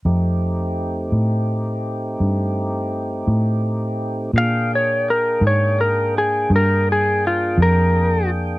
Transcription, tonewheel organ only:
X:1
M:12/8
L:1/8
Q:3/8=56
K:Fdor
V:1 name="Tonewheel organ"
[=A,CEG]12 | [B,DAg]12 |]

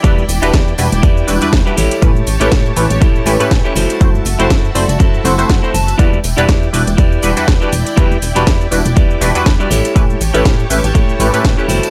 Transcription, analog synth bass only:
X:1
M:4/4
L:1/16
Q:"Swing 16ths" 1/4=121
K:Em
V:1 name="Analog synth bass" clef=bass
E,,2 E,,, E,,, E,,2 E,,, E,,, E,,2 E,,, E,, E,, z A,,, z | A,,2 A,,, A,,, A,,2 A,,, A,,, A,,2 A,,, A,, A,, z F,,, z | F,,2 F,,, F,,, F,,2 F,,, F,,, F,,2 F,,,2 F,, z F,,,2 | E,,2 E,,, E,,, E,,2 E,,, E,,, E,,2 E,,, E,, E,, z E,,, z |
E,,2 E,,, E,,, E,,2 E,,, E,,, E,,2 E,,, E,, E,, z A,,, z | A,,2 A,,, A,,, A,,2 A,,, A,,, A,,2 A,,, A,, A,, z F,,, z |]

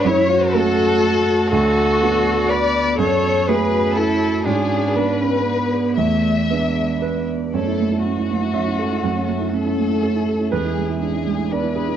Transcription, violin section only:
X:1
M:3/4
L:1/8
Q:1/4=121
K:F#m
V:1 name="Violin section"
c2 A4 | F4 d2 | c2 B2 A2 | G2 B4 |
e4- e z | A2 F4- | F2 A4 | G2 G2 B2 |]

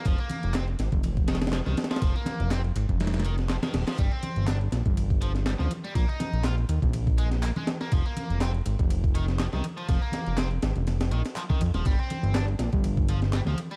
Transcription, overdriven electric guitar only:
X:1
M:4/4
L:1/16
Q:"Swing 16ths" 1/4=122
K:Fdor
V:1 name="Overdriven electric guitar" clef=bass
F, B,3 C z4 z E, z F, E, z F, | F, B,3 C z4 z E, z F, E, z F, | G, C3 D z4 z F, z G, F, z G, | B, E3 F z4 z A, z B, A, z B, |
F, B,3 C z4 z E, z F, E, z F, | F, B,3 C z4 z E, z F, E, z F, | G, C3 D z4 z F, z G, F, z G, |]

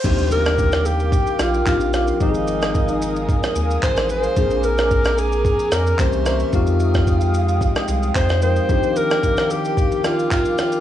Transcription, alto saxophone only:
X:1
M:4/4
L:1/8
Q:"Swing 16ths" 1/4=111
K:Eb
V:1 name="Alto saxophone"
c B2 G2 F F F | E4- E z c c- | c B2 A2 B c c | F4- F z c c- |
c B2 G2 F F F |]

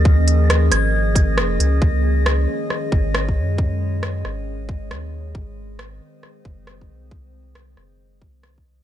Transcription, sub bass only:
X:1
M:4/4
L:1/8
Q:"Swing 16ths" 1/4=136
K:Db
V:1 name="Sub bass" clef=bass
E,,3 A,,,3 F,,, D,, | D,,3 z2 A,,,2 G,,- | G,,3 A,,,3 E,,2 | A,,,3 z2 G,,,2 C,,- |
C,,3 G,,,2 C,,3 |]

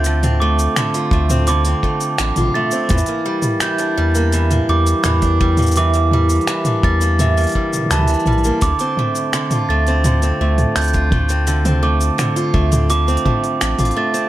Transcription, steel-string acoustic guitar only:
X:1
M:4/4
L:1/16
Q:1/4=84
K:Dm
V:1 name="Steel-string acoustic guitar"
[D,A,CF] C A,2 D, F A, C D, C A,2 D, F A, C | E, B, G,2 E, D G, B, E, B, G,2 E, D G, B, | E, B, G,2 E, D G, B, E, B, G,2 E, D G, B, | D, C A,2 D, F A, C D, C A,2 D, F A, C |
D, C A,2 D, F A, C D, C A,2 D, F A, C |]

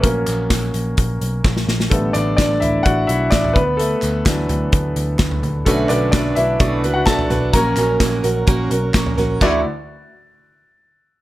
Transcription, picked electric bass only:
X:1
M:4/4
L:1/8
Q:1/4=128
K:F#phr
V:1 name="Picked electric bass" clef=bass
^A,,, A,,, A,,, A,,, A,,, B,,, A,,, A,,, | A,,, A,,, A,,, A,,, A,,, B,,, A,,, D,,- | D,, D,, D,, D,, D,, D,, D,, D,, | B,,, B,,, B,,, B,,, B,,, C,, B,,, B,,, |
^A,,, A,,, A,,, A,,, A,,, B,,, A,,, A,,, | D,, z6 z |]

